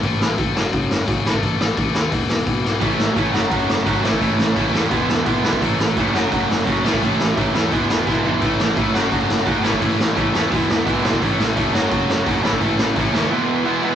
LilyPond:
<<
  \new Staff \with { instrumentName = "Overdriven electric guitar" } { \time 4/4 \key a \major \tempo 4 = 172 r1 | r1 | <a, e a cis' e'>4 <a, e a cis' e'>8 <fis a cis' fis'>8 <fis a cis' fis'>4 <fis a cis' fis'>8 <a, e a cis' e'>8 | <a, e a cis' e'>4 <a, e a cis' e'>8 <a, e a cis' e'>8 <e gis b e'>4 <e gis b e'>8 <e gis b e'>8 |
<a, e a cis' e'>4 <a, e a cis' e'>8 <fis a cis' fis'>8 <fis a cis' fis'>4 <fis a cis' fis'>8 <a, e a cis' e'>8 | <a, e a cis' e'>4 <a, e a cis' e'>8 <a, e a cis' e'>8 <e gis b e'>4 <e gis b e'>8 <e gis b e'>8 | <a, e a cis' e'>4 <a, e a cis' e'>8 <fis a cis' fis'>8 <fis a cis' fis'>4 <fis a cis' fis'>8 <a, e a cis' e'>8 | <a, e a cis' e'>4 <a, e a cis' e'>8 <a, e a cis' e'>8 <e gis b e'>4 <e gis b e'>8 <e gis b e'>8 |
<a, e a cis' e'>4 <a, e a cis' e'>8 <fis a cis' fis'>8 <fis a cis' fis'>4 <fis a cis' fis'>8 <a, e a cis' e'>8 | <a, e a cis' e'>4 <a, e a cis' e'>8 <a, e a cis' e'>8 <e gis b e'>4 <e gis b e'>8 <e gis b e'>8 | }
  \new Staff \with { instrumentName = "Distorted electric guitar" } { \clef bass \time 4/4 \key a \major <a, e a>4 <a, e a>8 <fis, cis fis>8 <fis, cis fis>4 <fis, cis fis>8 <a, e a>8 | <a, e a>4 <a, e a>8 <a, e a>8 <e, b, e>4 <e, b, e>8 <e, b, e>8 | <a, e a>4 <a, e a>8 <fis, cis fis>8 <fis, cis fis>4 <fis, cis fis>8 <a, e a>8 | <a, e a>4 <a, e a>8 <a, e a>8 <e, b, e>4 <e, b, e>8 <e, b, e>8 |
<a, e a>4 <a, e a>8 <fis, cis fis>8 <fis, cis fis>4 <fis, cis fis>8 <a, e a>8 | <a, e a>4 <a, e a>8 <a, e a>8 <e, b, e>4 <e, b, e>8 <e, b, e>8 | <a, e a>4 <a, e a>8 <fis, cis fis>8 <fis, cis fis>4 <fis, cis fis>8 <a, e a>8 | <a, e a>4 <a, e a>8 <a, e a>8 <e, b, e>4 <e, b, e>8 <e, b, e>8 |
<a, e a>4 <a, e a>8 <fis, cis fis>8 <fis, cis fis>4 <fis, cis fis>8 <a, e a>8 | <a, e a>4 <a, e a>8 <a, e a>8 <e, b, e>4 <e, b, e>8 <e, b, e>8 | }
  \new Staff \with { instrumentName = "Picked electric bass" } { \clef bass \time 4/4 \key a \major a,,8 a,,8 a,,8 fis,,8 fis,,8 fis,,8 gis,,8 a,,8 | a,,8 a,,8 a,,8 dis,8 e,,8 e,,8 b,,8 b,,8 | a,,8 a,,8 a,,8 fis,,8 fis,,8 fis,,8 gis,,8 a,,8 | a,,8 a,,8 a,,8 e,8 e,,8 e,,8 b,,8 b,,8 |
a,,8 a,,8 f,,8 fis,,8 fis,,8 fis,,8 b,,8 a,,8 | a,,8 a,,8 a,,8 e,8 e,,8 e,,8 b,,8 b,,8 | a,,8 a,,8 a,,8 fis,,8 fis,,8 fis,,8 fis,,8 a,,8 | a,,8 a,,8 a,,8 e,8 e,,8 e,,8 b,,8 b,,8 |
a,,8 a,,8 e,,8 fis,,8 fis,,8 fis,,8 fis,,8 a,,8 | a,,8 a,,8 a,,8 dis,8 r2 | }
  \new DrumStaff \with { instrumentName = "Drums" } \drummode { \time 4/4 <hho bd>8 sn8 <hho bd>8 sn8 <hho bd>8 sn8 <hho bd>8 sn16 bd16 | <hho bd>8 sn8 <hho bd>8 sn8 <hho bd>8 sn8 <hho bd>8 sn8 | <hho bd>8 sn8 <hho bd>8 sn8 <hho bd>8 sn8 <hho bd>8 sn16 bd16 | <hho bd>8 sn8 <hho bd>8 sn8 <hho bd>8 sn8 <hho bd>8 sn16 bd16 |
<hho bd>8 sn8 <hho bd>8 sn8 <hho bd>8 sn8 <hho bd>8 sn16 bd16 | <hho bd>8 sn8 <hho bd>8 sn8 <hho bd>8 sn8 <bd sn>8 tomfh8 | <hho bd>8 sn8 <hho bd>8 sn8 <hho bd>8 sn8 <hho bd>8 sn16 bd16 | <hho bd>8 sn8 <hho bd>8 sn8 <hho bd>8 sn8 <hho bd>8 sn16 bd16 |
<hho bd>8 sn8 <hho bd>8 sn8 <hho bd>8 sn8 <hho bd>8 sn16 bd16 | <hho bd>8 sn8 <hho bd>8 sn8 r4 r4 | }
>>